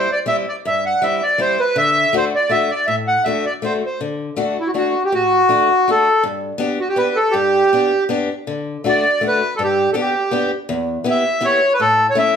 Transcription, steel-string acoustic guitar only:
0.26 0.45 G3 medium
0.26 0.45 C4 soft
0.26 0.45 E4 medium
0.65 0.93 G2 medium
1.02 1.20 G3 medium
1.02 1.21 C4 soft
1.02 1.21 E4 soft
1.38 1.57 G3 medium
1.38 1.57 C4 medium
1.38 1.57 E4 medium
1.76 2.04 D3 medium
2.13 2.31 A3 medium
2.13 2.31 D4 medium
2.13 2.32 F#4 medium
2.49 2.68 A3 soft
2.49 2.68 D4 soft
2.49 2.69 F#4 medium
2.88 3.16 A2 medium
3.26 3.43 A3 medium
3.26 3.44 D4 soft
3.26 3.44 F#4 medium
3.62 3.81 A3 soft
3.62 3.81 D4 soft
3.62 3.82 F#4 medium
4.01 4.29 D3 medium
4.36 4.55 A3 medium
4.36 4.56 D4 medium
4.36 4.56 F#4 medium
4.74 4.93 A3 medium
4.74 4.93 D4 soft
4.74 4.93 F#4 soft
5.12 5.41 A2 medium
5.49 5.67 A3 medium
5.49 5.68 D4 medium
5.49 5.68 F#4 medium
5.88 6.05 A3 soft
5.88 6.06 D4 soft
5.88 6.06 F#4 medium
6.23 6.52 G2 medium
6.58 6.77 B3 medium
6.58 6.78 D4 medium
6.58 6.78 G4 medium
6.96 7.15 B3 soft
6.96 7.15 D4 soft
6.96 7.15 G4 medium
7.34 7.62 G2 medium
7.73 7.91 B3 medium
7.73 7.91 D4 medium
7.73 7.91 G4 soft
8.09 8.28 B3 medium
8.09 8.28 D4 medium
8.09 8.29 G4 medium
8.47 8.76 D3 medium
8.84 9.03 A3 medium
8.84 9.03 D4 soft
8.84 9.04 F#4 medium
9.21 9.40 A3 medium
9.21 9.40 D4 soft
9.21 9.41 F#4 medium
9.59 9.87 G2 medium
9.94 10.13 B3 medium
9.94 10.13 D4 medium
9.94 10.13 G4 medium
10.31 10.50 B3 medium
10.31 10.50 D4 medium
10.31 10.50 G4 medium
10.69 10.97 E2 medium
11.04 11.23 B3 medium
11.04 11.24 E4 medium
11.04 11.24 G4 medium
11.41 11.60 B3 medium
11.41 11.60 E4 soft
11.41 11.60 G4 medium
11.80 12.08 A2 medium
12.15 12.34 A3 medium
12.15 12.34 C#4 soft
12.15 12.35 E4 medium

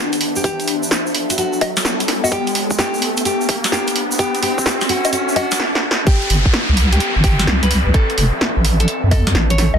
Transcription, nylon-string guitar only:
0.36 0.43 G4 medium
0.44 0.74 G4 loud
1.30 1.37 F#4 medium
1.38 1.68 F#4 medium
2.24 2.31 F#4 medium
2.32 2.62 G4 loud
2.79 3.09 G4 medium
3.25 3.56 G4 medium
3.72 4.02 G4 loud
4.19 4.41 G4 loud
4.43 4.65 G4 loud
4.66 4.88 G4 medium
4.89 5.12 F#4 loud
5.13 5.35 F#4 loud
5.36 5.58 F#4 loud
6.07 6.37 G4 loud
6.92 7.13 G4 loud
7.24 7.46 G4 medium
7.63 7.84 B4 loud
7.94 8.24 A4 loud
8.80 9.01 A4 medium
9.11 9.34 A4 medium
9.50 9.71 C#5 medium

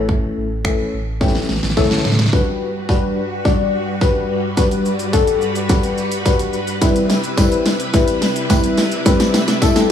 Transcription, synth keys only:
0.00 0.48 E3 medium
0.00 0.48 A3 medium
0.00 0.48 C#4 medium
0.00 0.48 A4 medium
0.65 0.96 E3 medium
0.65 0.97 A3 medium
0.65 0.97 C#4 medium
0.65 0.97 A4 medium
1.21 1.52 E3 medium
1.21 1.53 A3 medium
1.21 1.53 C#4 medium
1.21 1.53 G4 medium
1.77 2.09 E3 medium
1.77 2.09 A3 medium
1.77 2.09 C#4 medium
1.77 2.09 A4 loud
2.33 2.65 G3 medium
2.33 2.65 D4 medium
2.33 2.65 F#4 medium
2.33 2.65 B4 medium
2.89 3.21 G3 medium
2.89 3.21 D4 medium
2.89 3.21 F#4 medium
2.89 3.21 B4 loud
3.45 3.77 G3 medium
3.45 3.77 D4 medium
3.45 3.77 F#4 medium
3.45 3.77 D5 medium
4.01 4.33 G3 medium
4.01 4.33 D4 medium
4.01 4.33 F#4 medium
4.01 4.33 B4 loud
4.57 4.89 G3 medium
4.57 4.89 D4 medium
4.57 4.89 F#4 medium
4.57 4.89 B4 loud
5.13 5.45 G3 medium
5.13 5.45 D4 medium
5.13 5.45 F#4 medium
5.13 5.45 A4 loud
5.69 6.01 G3 medium
5.69 6.01 D4 medium
5.69 6.01 F#4 medium
5.69 6.01 B4 loud
6.25 6.57 G3 medium
6.25 6.57 D4 medium
6.25 6.57 F#4 medium
6.25 6.57 B4 medium
6.81 7.13 G3 medium
6.81 7.13 C4 medium
6.81 7.13 E4 medium
6.81 7.13 B4 loud
7.37 7.69 G3 medium
7.37 7.69 C4 medium
7.37 7.69 E4 medium
7.37 7.70 B4 loud
7.93 8.25 G3 medium
7.93 8.25 C4 medium
7.93 8.25 E4 medium
7.93 8.26 B4 loud
8.50 8.81 G3 medium
8.50 8.81 C4 medium
8.50 8.82 E4 medium
8.50 8.82 B4 loud
9.06 9.37 G3 medium
9.06 9.38 C4 medium
9.06 9.38 E4 medium
9.06 9.38 B4 loud
9.62 9.92 G3 medium
9.62 9.92 C4 medium
9.62 9.92 E4 medium
9.62 9.92 A4 loud

